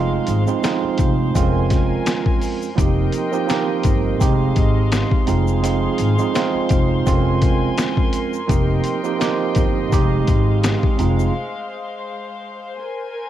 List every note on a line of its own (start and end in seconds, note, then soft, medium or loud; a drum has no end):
0.00 0.15 F1 loud
0.00 0.42 F2 medium
0.00 0.43 G#3 medium
0.00 1.32 G#3 medium
0.00 0.43 C4 medium
0.00 0.43 D#4 medium
0.00 0.44 F4 loud
0.00 2.74 C5 medium
0.00 1.32 F5 medium
0.00 2.74 C6 medium
0.27 0.44 G#1 medium
0.27 closed hi-hat medium
0.27 shaker soft
0.46 0.61 F2 medium
0.46 0.62 G#3 medium
0.46 0.63 C4 medium
0.46 0.63 D#4 medium
0.46 0.64 F4 loud
0.46 shaker medium
0.63 1.33 F2 medium
0.63 1.33 G#3 medium
0.63 1.34 C4 loud
0.63 1.36 D#4 medium
0.63 1.35 F4 loud
0.63 snare loud
0.63 snare medium
0.63 closed hi-hat medium
0.63 shaker medium
0.84 muted upright bass stroke soft
0.98 1.28 F1 medium
0.98 kick medium
0.98 closed hi-hat medium
0.98 shaker medium
1.34 1.93 F1 loud
1.34 2.67 F2 loud
1.34 2.67 G#3 medium
1.34 2.68 C4 medium
1.34 2.68 C#4 medium
1.34 2.68 F4 loud
1.34 2.77 A#4 medium
1.34 2.77 G#5 medium
1.34 kick medium
1.34 closed hi-hat medium
1.34 shaker medium
1.70 kick medium
1.70 snare soft
1.70 closed hi-hat medium
1.70 shaker soft
2.06 snare loud
2.06 closed hi-hat loud
2.06 shaker medium
2.26 kick medium
2.41 open hi-hat medium
2.41 shaker medium
2.62 shaker medium
2.75 3.07 F1 loud
2.75 3.27 F3 loud
2.75 3.28 A#3 medium
2.75 3.28 C4 medium
2.75 3.28 D#4 medium
2.75 3.29 G4 loud
2.75 4.19 A#4 medium
2.75 4.18 D#5 medium
2.75 4.20 G5 medium
2.75 13.30 C6 medium
2.75 kick loud
2.75 closed hi-hat medium
2.75 shaker medium
3.12 closed hi-hat medium
3.12 shaker medium
3.31 3.46 F3 loud
3.31 3.46 A#3 medium
3.31 3.47 C4 medium
3.31 3.47 D#4 medium
3.31 3.48 G4 loud
3.31 shaker medium
3.47 4.19 F3 loud
3.47 4.20 A#3 medium
3.47 4.19 C4 medium
3.47 4.19 D#4 medium
3.47 4.20 G4 loud
3.47 snare loud
3.47 snare medium
3.47 closed hi-hat medium
3.47 shaker medium
3.83 4.14 G1 medium
3.83 kick medium
3.83 closed hi-hat medium
3.83 shaker medium
4.19 4.50 F1 loud
4.19 5.25 F2 loud
4.19 5.26 G#3 medium
4.19 5.25 G#3 loud
4.19 5.26 C4 medium
4.19 5.27 D#4 medium
4.19 5.28 G4 loud
4.19 5.26 D#5 medium
4.19 5.26 F5 medium
4.19 kick medium
4.19 closed hi-hat medium
4.19 shaker medium
4.56 5.02 G#1 medium
4.56 kick medium
4.56 closed hi-hat medium
4.56 shaker soft
4.92 snare loud
4.92 closed hi-hat loud
4.92 shaker medium
5.12 kick medium
5.26 5.86 F1 loud
5.26 5.60 F2 medium
5.26 5.60 G#3 medium
5.26 5.61 C4 medium
5.26 5.61 D#4 medium
5.26 5.61 F4 loud
5.26 7.04 G#4 medium
5.26 8.46 C5 medium
5.26 7.04 F5 medium
5.26 closed hi-hat medium
5.26 shaker soft
5.48 shaker medium
5.62 6.14 F2 medium
5.62 6.14 G#3 medium
5.62 6.14 C4 medium
5.62 6.15 D#4 medium
5.62 6.15 F4 loud
5.62 closed hi-hat medium
5.62 shaker medium
5.98 6.15 G#1 medium
5.98 closed hi-hat medium
5.98 shaker medium
6.18 6.33 F2 medium
6.18 6.33 G#3 medium
6.18 6.34 C4 medium
6.18 6.35 D#4 medium
6.18 6.35 F4 loud
6.18 shaker medium
6.34 7.04 F2 medium
6.34 7.05 G#3 medium
6.34 7.05 C4 medium
6.34 7.07 D#4 medium
6.34 7.07 F4 loud
6.34 snare loud
6.34 snare medium
6.34 closed hi-hat medium
6.34 shaker medium
6.55 muted upright bass stroke soft
6.69 7.00 F1 medium
6.69 kick loud
6.69 closed hi-hat medium
6.69 shaker medium
7.05 7.65 F1 loud
7.05 8.39 F2 loud
7.05 8.39 G#3 medium
7.05 8.39 C4 medium
7.05 8.40 C#4 medium
7.05 8.40 F4 loud
7.05 9.89 A#4 medium
7.05 8.48 G#5 medium
7.05 kick medium
7.05 closed hi-hat medium
7.05 shaker medium
7.42 kick medium
7.42 closed hi-hat medium
7.42 shaker soft
7.78 snare loud
7.78 closed hi-hat loud
7.78 shaker medium
7.97 kick medium
8.13 closed hi-hat medium
8.13 shaker medium
8.33 shaker medium
8.47 8.78 F1 loud
8.47 8.99 F3 medium
8.47 8.99 A#3 medium
8.47 9.00 C4 medium
8.47 9.00 D#4 medium
8.47 9.00 G4 loud
8.47 10.97 D#5 medium
8.47 9.91 G5 medium
8.47 kick loud
8.47 closed hi-hat medium
8.47 shaker medium
8.84 closed hi-hat medium
8.84 shaker medium
9.03 9.17 F3 loud
9.03 9.18 A#3 medium
9.03 9.19 C4 loud
9.03 9.19 D#4 medium
9.03 9.20 G4 loud
9.03 shaker medium
9.19 9.91 F3 medium
9.19 9.91 A#3 medium
9.19 9.91 C4 medium
9.19 9.91 D#4 medium
9.19 9.92 G4 loud
9.19 snare loud
9.19 snare medium
9.19 closed hi-hat medium
9.19 shaker medium
9.55 9.85 G1 medium
9.55 kick medium
9.55 closed hi-hat medium
9.55 shaker medium
9.91 10.21 F1 loud
9.91 10.96 F2 loud
9.91 10.97 G#3 medium
9.91 12.75 G#3 medium
9.91 10.97 C4 medium
9.91 10.98 D#4 medium
9.91 11.00 G4 loud
9.91 12.75 F5 medium
9.91 kick medium
9.91 closed hi-hat medium
9.91 shaker medium
10.27 10.73 G#1 medium
10.27 kick medium
10.27 closed hi-hat medium
10.27 shaker soft
10.63 snare loud
10.63 closed hi-hat loud
10.63 shaker medium
10.83 kick medium
10.97 11.28 F1 loud
10.97 11.31 F2 medium
10.97 11.32 G#3 medium
10.97 11.32 C4 medium
10.97 11.32 D#4 medium
10.97 11.33 F4 loud
10.97 13.30 C5 medium
10.97 closed hi-hat medium
10.97 shaker soft
11.19 shaker medium
12.79 13.30 A#4 medium
12.79 13.30 G#5 medium